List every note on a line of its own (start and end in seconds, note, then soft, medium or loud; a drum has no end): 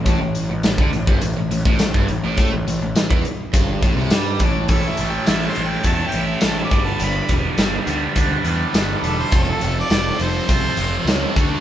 0.06 0.19 A1 medium
0.06 0.20 A2 loud
0.06 kick loud
0.06 closed hi-hat medium
0.21 0.47 A1 medium
0.21 0.44 A2 medium
0.35 closed hi-hat medium
0.50 0.63 A1 medium
0.50 0.63 A2 medium
0.63 0.77 A1 medium
0.63 0.78 A2 medium
0.63 snare loud
0.63 closed hi-hat medium
0.63 tambourine medium
0.78 0.92 D2 medium
0.78 0.92 D3 loud
0.78 kick loud
0.93 1.07 A1 medium
0.93 1.07 A2 medium
0.93 closed hi-hat medium
1.07 1.21 G1 medium
1.07 1.21 G2 loud
1.07 kick loud
1.22 1.35 A1 medium
1.22 1.36 A2 medium
1.22 closed hi-hat loud
1.37 1.50 A1 medium
1.37 1.50 A2 medium
1.51 1.64 A1 medium
1.51 1.65 A2 medium
1.51 closed hi-hat medium
1.65 1.79 A1 medium
1.65 1.79 A2 medium
1.65 kick loud
1.79 1.93 A1 medium
1.79 1.94 A2 medium
1.79 snare loud
1.79 closed hi-hat loud
1.79 tambourine loud
1.94 2.08 G1 medium
1.94 2.08 G2 loud
1.94 kick medium
2.08 2.22 A1 medium
2.08 2.23 A2 medium
2.08 closed hi-hat medium
2.23 2.36 A1 medium
2.23 2.37 A2 loud
2.37 2.51 A2 loud
2.37 2.52 A3 loud
2.37 kick loud
2.37 closed hi-hat medium
2.53 2.66 A1 medium
2.53 2.66 A2 medium
2.67 2.80 A1 medium
2.67 2.81 A2 medium
2.67 closed hi-hat medium
2.81 2.95 A1 medium
2.81 2.95 A2 medium
2.95 3.09 A1 medium
2.95 3.09 A2 medium
2.95 snare loud
2.95 closed hi-hat medium
2.95 tambourine loud
3.10 3.24 E2 medium
3.10 3.23 E3 loud
3.10 kick loud
3.25 closed hi-hat medium
3.53 3.80 G1 loud
3.53 3.81 G2 loud
3.53 kick loud
3.53 closed hi-hat loud
3.82 3.95 A1 medium
3.82 3.96 A2 medium
3.82 kick loud
3.82 closed hi-hat medium
3.96 4.10 C2 loud
3.96 4.11 C3 loud
4.10 4.38 G2 medium
4.10 4.39 G3 loud
4.10 snare loud
4.10 closed hi-hat loud
4.10 tambourine loud
4.39 4.67 A1 medium
4.39 4.68 A2 loud
4.39 kick loud
4.39 closed hi-hat medium
4.68 4.88 A1 medium
4.68 4.98 A2 medium
4.68 4.97 E3 loud
4.68 4.99 A3 loud
4.68 4.99 C#4 medium
4.68 4.99 E4 medium
4.68 4.92 A4 medium
4.68 5.00 A4 loud
4.68 kick loud
4.68 closed hi-hat medium
4.90 5.11 E5 medium
4.97 5.17 A1 medium
4.97 5.26 A2 medium
4.97 5.26 E3 medium
4.97 5.27 A3 medium
4.97 5.27 C#4 medium
4.97 5.28 E4 medium
4.97 5.29 A4 medium
4.97 closed hi-hat medium
5.10 5.29 G5 medium
5.26 5.47 A1 medium
5.26 5.55 A2 medium
5.26 5.55 E3 medium
5.26 5.56 A3 medium
5.26 5.56 C#4 loud
5.26 5.56 E4 loud
5.26 5.57 A4 loud
5.26 5.46 E5 medium
5.26 snare loud
5.26 closed hi-hat medium
5.26 tambourine loud
5.42 snare soft
5.48 5.69 C5 medium
5.55 5.76 A1 medium
5.55 5.84 A2 medium
5.55 5.84 E3 medium
5.55 5.86 A3 medium
5.55 5.85 C#4 medium
5.55 5.86 E4 medium
5.55 5.87 A4 medium
5.55 closed hi-hat medium
5.67 5.85 G5 medium
5.84 6.03 E2 medium
5.84 6.13 A2 medium
5.84 6.13 E3 medium
5.84 6.14 A3 medium
5.84 6.14 C#4 medium
5.84 6.14 E4 medium
5.84 6.16 A4 loud
5.84 6.04 A5 medium
5.84 kick medium
5.84 closed hi-hat medium
6.07 6.25 G5 medium
6.12 6.33 A1 medium
6.12 6.42 A2 medium
6.12 6.41 E3 loud
6.12 6.43 A3 medium
6.12 6.43 C#4 medium
6.12 6.43 E4 medium
6.12 6.44 A4 loud
6.12 closed hi-hat medium
6.26 6.47 E5 medium
6.41 6.62 A1 medium
6.41 6.70 A2 medium
6.41 6.70 E3 medium
6.41 6.72 A3 medium
6.41 6.71 C#4 medium
6.41 6.71 E4 medium
6.41 snare loud
6.41 closed hi-hat loud
6.41 tambourine loud
6.45 6.73 A4 medium
6.45 6.63 A5 medium
6.65 6.82 D6 medium
6.71 6.91 G1 medium
6.71 6.98 G2 medium
6.71 6.99 D3 loud
6.71 7.00 G3 medium
6.71 7.01 B3 loud
6.71 7.01 D4 medium
6.71 7.01 B4 loud
6.71 kick loud
6.71 closed hi-hat medium
6.84 7.02 A5 medium
6.99 7.19 G1 loud
6.99 7.27 G2 loud
6.99 7.28 D3 loud
6.99 7.29 G3 loud
6.99 7.31 B3 medium
6.99 7.30 D4 loud
6.99 7.31 B4 loud
6.99 closed hi-hat medium
7.04 7.31 B5 medium
7.28 7.48 E1 medium
7.28 7.56 G2 medium
7.28 7.56 D3 medium
7.28 7.58 G3 medium
7.28 7.59 B3 medium
7.28 7.58 D4 medium
7.28 kick medium
7.28 closed hi-hat medium
7.33 7.59 B4 medium
7.57 7.77 G1 medium
7.57 7.85 G2 medium
7.57 7.86 D3 medium
7.57 7.87 G3 medium
7.57 7.87 B3 medium
7.57 7.87 D4 medium
7.57 7.88 B4 loud
7.57 snare loud
7.57 closed hi-hat medium
7.57 tambourine loud
7.86 8.06 D2 medium
7.86 8.14 G2 medium
7.86 8.15 D3 medium
7.86 8.16 G3 loud
7.86 8.17 B3 loud
7.86 8.16 D4 loud
7.86 8.17 B4 loud
7.86 closed hi-hat medium
8.15 8.36 D2 medium
8.15 8.43 G2 medium
8.15 8.43 D3 medium
8.15 8.45 G3 medium
8.15 8.46 B3 medium
8.15 8.46 D4 medium
8.15 8.46 B4 medium
8.15 kick medium
8.15 closed hi-hat loud
8.44 8.64 E2 medium
8.44 8.72 G2 loud
8.44 8.72 D3 medium
8.44 8.73 G3 medium
8.44 8.75 B3 medium
8.44 8.74 D4 medium
8.44 8.75 B4 loud
8.44 closed hi-hat medium
8.73 8.94 G1 medium
8.73 9.01 G2 medium
8.73 9.02 D3 medium
8.73 9.02 G3 medium
8.73 9.04 B3 medium
8.73 9.03 D4 medium
8.73 9.04 B4 loud
8.73 snare loud
8.73 closed hi-hat loud
8.73 tambourine loud
9.02 9.22 E1 medium
9.02 9.30 G2 medium
9.02 9.31 D3 medium
9.02 9.31 G3 medium
9.02 9.32 B3 medium
9.02 9.31 D4 medium
9.02 9.19 A4 medium
9.02 9.32 B4 medium
9.02 closed hi-hat medium
9.20 9.47 C5 medium
9.31 9.51 F1 loud
9.31 9.59 F2 loud
9.31 9.60 C3 loud
9.31 9.59 F3 medium
9.31 9.61 A3 loud
9.31 9.61 C4 medium
9.31 9.61 F4 medium
9.31 9.62 A4 medium
9.31 kick loud
9.31 closed hi-hat medium
9.49 9.77 A4 medium
9.60 9.81 F1 medium
9.60 9.89 F2 medium
9.60 9.89 C3 medium
9.60 9.89 F3 medium
9.60 9.90 A3 medium
9.60 9.90 C4 medium
9.60 9.90 F4 medium
9.60 9.92 A4 medium
9.60 closed hi-hat medium
9.80 10.20 D5 loud
9.90 10.10 F1 loud
9.90 10.18 F2 medium
9.90 10.18 C3 medium
9.90 10.19 F3 medium
9.90 10.20 A3 medium
9.90 10.19 C4 loud
9.90 10.20 F4 loud
9.90 10.21 A4 loud
9.90 snare loud
9.90 closed hi-hat medium
9.90 tambourine loud
10.19 10.39 F1 medium
10.19 10.46 F2 medium
10.19 10.47 C3 medium
10.19 10.47 F3 medium
10.19 10.49 A3 medium
10.19 10.48 C4 medium
10.19 10.49 F4 loud
10.19 10.49 A4 medium
10.19 11.33 C5 loud
10.19 closed hi-hat medium
10.48 10.68 C2 medium
10.48 10.76 F2 medium
10.48 10.76 C3 medium
10.48 10.76 F3 medium
10.48 10.77 A3 medium
10.48 10.77 C4 medium
10.48 10.78 F4 medium
10.48 10.79 A4 medium
10.48 kick medium
10.48 closed hi-hat loud
10.77 10.96 F1 medium
10.77 11.06 F2 medium
10.77 11.06 C3 loud
10.77 11.05 F3 medium
10.77 11.07 A3 medium
10.77 11.06 C4 medium
10.77 11.06 F4 loud
10.77 11.08 A4 loud
10.77 closed hi-hat medium
11.05 11.25 C#2 medium
11.05 11.34 F2 medium
11.05 11.34 C3 medium
11.05 11.34 F3 medium
11.05 11.35 A3 medium
11.05 11.35 C4 medium
11.05 11.35 F4 medium
11.05 11.37 A4 medium
11.05 snare loud
11.05 closed hi-hat medium
11.05 tambourine loud
11.35 11.55 D2 medium
11.35 11.60 D3 medium
11.35 11.60 A3 medium
11.35 11.60 D4 medium
11.35 11.60 F#4 loud
11.35 11.60 A4 loud
11.35 kick loud
11.35 closed hi-hat medium